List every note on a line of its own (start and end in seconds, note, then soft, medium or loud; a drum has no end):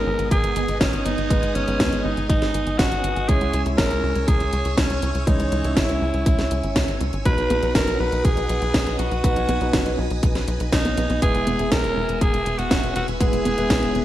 0.00 1.27 G#3 medium
0.00 1.27 B3 medium
0.00 3.25 B3 medium
0.00 1.27 D#4 medium
0.00 1.27 G#4 medium
0.00 0.31 A#4 loud
0.00 3.25 D#5 medium
0.00 7.21 G#5 medium
0.00 3.25 D#6 medium
0.06 0.17 G#1 medium
0.19 0.30 G#1 medium
0.19 closed hi-hat soft
0.31 0.42 G#1 loud
0.31 0.77 G#4 loud
0.31 kick loud
0.31 closed hi-hat medium
0.44 0.54 G#1 medium
0.44 closed hi-hat soft
0.56 0.67 G#1 medium
0.56 closed hi-hat medium
0.68 0.79 G#1 medium
0.68 closed hi-hat soft
0.80 0.92 G#1 loud
0.80 1.07 C#4 medium
0.80 kick loud
0.80 snare loud
0.80 closed hi-hat medium
0.93 1.04 G#1 medium
0.93 closed hi-hat soft
1.05 1.16 G#1 medium
1.05 1.56 D#4 loud
1.05 closed hi-hat medium
1.18 1.29 G#1 medium
1.18 closed hi-hat soft
1.30 1.41 G#1 loud
1.30 1.65 G#3 medium
1.30 1.65 B3 medium
1.30 1.65 D#4 medium
1.30 1.65 B4 medium
1.30 kick loud
1.30 closed hi-hat medium
1.43 1.54 G#1 medium
1.43 closed hi-hat soft
1.55 1.66 G#1 medium
1.55 2.04 C#4 medium
1.55 closed hi-hat medium
1.68 1.78 G#1 medium
1.68 3.26 G#3 medium
1.68 3.26 B3 medium
1.68 3.26 D#4 medium
1.68 3.26 B4 medium
1.68 closed hi-hat soft
1.80 1.91 D#2 loud
1.80 kick loud
1.80 snare loud
1.80 closed hi-hat medium
1.92 2.03 G#1 medium
1.92 closed hi-hat soft
2.04 2.16 G#1 medium
2.04 2.27 D#4 medium
2.17 2.28 G#1 medium
2.17 closed hi-hat soft
2.29 2.40 G#1 loud
2.29 2.80 D#4 loud
2.29 kick loud
2.29 closed hi-hat medium
2.42 2.53 G#1 medium
2.42 snare soft
2.42 closed hi-hat soft
2.54 2.65 G#1 medium
2.54 closed hi-hat medium
2.67 2.78 G#1 medium
2.67 closed hi-hat soft
2.78 2.90 G#1 loud
2.78 3.30 F#4 loud
2.78 kick loud
2.78 snare loud
2.78 closed hi-hat medium
2.91 3.02 G#1 medium
2.91 closed hi-hat soft
3.04 3.15 G#1 medium
3.04 closed hi-hat medium
3.16 3.27 G#1 medium
3.16 closed hi-hat soft
3.28 3.40 C#2 loud
3.28 3.63 G#3 medium
3.28 3.63 C#4 medium
3.28 3.63 E4 medium
3.28 3.63 G#4 loud
3.28 7.21 C#5 medium
3.28 3.63 C#5 medium
3.28 7.21 E6 medium
3.28 kick loud
3.28 closed hi-hat medium
3.41 3.52 C#2 medium
3.41 closed hi-hat soft
3.53 3.64 C#2 medium
3.53 closed hi-hat medium
3.66 3.77 C#2 medium
3.66 5.24 G#3 medium
3.66 5.24 C#4 medium
3.66 5.24 E4 medium
3.66 5.24 C#5 medium
3.66 closed hi-hat soft
3.78 3.89 G#1 loud
3.78 4.29 A#4 loud
3.78 kick loud
3.78 snare loud
3.78 closed hi-hat medium
3.91 4.02 C#2 medium
3.91 closed hi-hat soft
4.03 4.14 C#2 medium
4.16 4.26 C#2 medium
4.16 closed hi-hat soft
4.27 4.39 C#2 loud
4.27 4.77 G#4 loud
4.27 kick loud
4.27 closed hi-hat medium
4.40 4.51 C#2 medium
4.40 closed hi-hat soft
4.53 4.64 C#2 medium
4.53 closed hi-hat medium
4.65 4.76 C#2 medium
4.65 closed hi-hat soft
4.77 4.88 C#2 loud
4.77 5.28 C#4 medium
4.77 kick loud
4.77 snare loud
4.77 closed hi-hat medium
4.90 5.01 C#2 medium
4.90 closed hi-hat soft
5.02 5.13 C#2 medium
5.02 closed hi-hat medium
5.15 5.26 C#2 medium
5.15 closed hi-hat soft
5.27 5.38 C#2 loud
5.27 5.61 E3 medium
5.27 5.61 G#3 medium
5.27 5.61 C#4 medium
5.27 5.78 D#4 medium
5.27 5.61 C#5 medium
5.27 kick loud
5.27 closed hi-hat medium
5.40 5.50 C#2 medium
5.40 closed hi-hat soft
5.52 5.63 C#2 medium
5.52 closed hi-hat medium
5.64 5.75 C#2 medium
5.64 7.23 G#3 medium
5.64 7.22 C#4 medium
5.64 7.23 E4 medium
5.64 7.22 C#5 medium
5.64 closed hi-hat soft
5.76 5.88 G#1 loud
5.76 7.00 E4 medium
5.76 kick loud
5.76 snare loud
5.76 closed hi-hat medium
5.89 6.00 C#2 medium
5.89 closed hi-hat soft
6.02 6.12 C#2 medium
6.14 6.25 C#2 medium
6.14 closed hi-hat soft
6.26 6.37 C#2 loud
6.26 kick loud
6.26 closed hi-hat medium
6.39 6.50 C#2 medium
6.39 snare soft
6.39 closed hi-hat soft
6.51 6.62 C#2 medium
6.51 closed hi-hat medium
6.63 6.74 G#1 medium
6.63 closed hi-hat soft
6.76 6.87 C#2 loud
6.76 kick loud
6.76 snare loud
6.76 closed hi-hat medium
6.88 6.99 G#1 medium
6.88 closed hi-hat soft
7.01 7.12 C#2 medium
7.01 closed hi-hat medium
7.13 7.24 G#1 medium
7.13 closed hi-hat soft
7.25 7.36 B1 loud
7.25 7.60 F#3 medium
7.25 7.60 B3 medium
7.25 7.60 D#4 medium
7.25 7.60 B4 medium
7.25 11.18 B4 medium
7.25 7.72 B4 loud
7.25 11.18 D#5 medium
7.25 9.22 F#5 medium
7.25 11.18 D#6 medium
7.25 kick loud
7.25 closed hi-hat medium
7.38 7.49 B1 medium
7.38 closed hi-hat soft
7.50 7.61 B1 loud
7.50 closed hi-hat medium
7.50 high conga medium
7.63 7.73 B1 medium
7.63 9.21 F#3 medium
7.63 9.21 B3 medium
7.63 9.21 D#4 medium
7.63 9.21 B4 medium
7.63 closed hi-hat soft
7.75 7.86 F#1 loud
7.75 8.01 A#4 loud
7.75 kick loud
7.75 snare loud
7.75 closed hi-hat medium
7.87 7.98 B1 medium
7.87 closed hi-hat soft
8.00 8.11 B1 medium
8.00 8.26 B4 loud
8.12 8.23 B1 medium
8.12 closed hi-hat soft
8.24 8.35 B1 loud
8.24 8.98 G#4 loud
8.24 kick loud
8.24 closed hi-hat medium
8.37 8.48 B1 medium
8.37 closed hi-hat soft
8.49 8.60 B1 medium
8.49 closed hi-hat medium
8.62 8.73 B1 medium
8.62 closed hi-hat soft
8.74 8.85 B1 loud
8.74 kick loud
8.74 snare loud
8.74 closed hi-hat medium
8.87 8.97 B1 medium
8.87 closed hi-hat soft
8.99 9.10 B1 medium
8.99 9.94 F#4 medium
8.99 closed hi-hat medium
9.11 9.22 B1 medium
9.11 closed hi-hat soft
9.24 9.35 B1 loud
9.24 9.58 F#3 medium
9.24 9.58 B3 medium
9.24 9.58 D#4 medium
9.24 9.58 B4 medium
9.24 14.05 G#5 medium
9.24 kick loud
9.24 closed hi-hat medium
9.36 9.47 B1 medium
9.36 closed hi-hat soft
9.49 9.59 B1 medium
9.49 closed hi-hat medium
9.49 high conga medium
9.61 9.72 B1 medium
9.61 11.19 F#3 medium
9.61 11.19 B3 medium
9.61 11.19 D#4 medium
9.61 11.19 B4 medium
9.61 closed hi-hat soft
9.73 9.84 F#1 loud
9.73 kick loud
9.73 snare loud
9.73 closed hi-hat medium
9.86 9.97 B1 medium
9.86 closed hi-hat soft
9.98 10.09 B1 medium
10.10 10.21 B1 medium
10.10 closed hi-hat soft
10.23 10.34 B1 loud
10.23 kick loud
10.23 closed hi-hat medium
10.35 10.46 B1 medium
10.35 snare soft
10.35 closed hi-hat soft
10.48 10.59 B1 loud
10.48 closed hi-hat medium
10.60 10.71 B1 medium
10.60 closed hi-hat soft
10.72 10.83 B1 loud
10.72 11.19 D#4 medium
10.72 kick medium
10.72 snare loud
10.72 closed hi-hat medium
10.85 10.96 B1 medium
10.85 closed hi-hat soft
10.85 high conga medium
10.97 11.08 B1 medium
10.97 closed hi-hat medium
10.97 high conga medium
11.10 11.21 B1 medium
11.10 closed hi-hat soft
11.10 high conga medium
11.22 11.33 E1 loud
11.22 11.56 G#3 medium
11.22 14.05 B3 medium
11.22 11.56 B3 medium
11.22 11.56 E4 medium
11.22 11.68 G#4 loud
11.22 11.56 B4 medium
11.22 14.05 E5 medium
11.22 14.05 E6 medium
11.22 kick loud
11.22 closed hi-hat medium
11.35 11.45 E1 medium
11.35 closed hi-hat soft
11.47 11.58 E1 loud
11.47 closed hi-hat medium
11.47 high conga medium
11.59 11.70 E1 medium
11.59 13.18 G#3 medium
11.59 13.18 B3 medium
11.59 13.18 E4 medium
11.59 13.18 G#4 medium
11.59 closed hi-hat soft
11.72 11.83 B1 loud
11.72 12.23 A#4 loud
11.72 kick loud
11.72 snare loud
11.72 closed hi-hat medium
11.84 11.95 E1 medium
11.84 closed hi-hat soft
11.97 12.07 E1 medium
12.09 12.20 E1 medium
12.09 closed hi-hat soft
12.21 12.32 E1 loud
12.21 12.60 G#4 loud
12.21 kick loud
12.21 closed hi-hat medium
12.34 12.45 E1 medium
12.34 closed hi-hat soft
12.46 12.57 E1 medium
12.46 closed hi-hat medium
12.58 12.69 E1 medium
12.58 12.95 F#4 loud
12.58 closed hi-hat soft
12.71 12.82 E1 loud
12.71 kick loud
12.71 snare loud
12.71 closed hi-hat medium
12.83 12.94 E1 medium
12.83 closed hi-hat soft
12.96 13.07 E1 medium
12.96 13.07 F#4 medium
12.96 closed hi-hat medium
13.08 13.19 E1 medium
13.08 closed hi-hat soft
13.20 13.31 E1 loud
13.20 13.55 G#3 medium
13.20 13.55 B3 medium
13.20 13.55 E4 medium
13.20 14.05 G#4 loud
13.20 13.55 B4 medium
13.20 kick loud
13.20 closed hi-hat medium
13.33 13.44 E1 medium
13.33 closed hi-hat soft
13.45 13.56 E1 medium
13.45 closed hi-hat medium
13.45 high conga medium
13.58 13.69 E1 medium
13.58 14.05 G#3 medium
13.58 14.05 B3 medium
13.58 14.05 E4 medium
13.58 14.05 B4 medium
13.58 closed hi-hat soft
13.70 13.81 B1 loud
13.70 kick loud
13.70 snare loud
13.70 closed hi-hat loud
13.83 13.93 E1 medium
13.83 closed hi-hat soft
13.95 14.05 E1 medium
13.95 closed hi-hat soft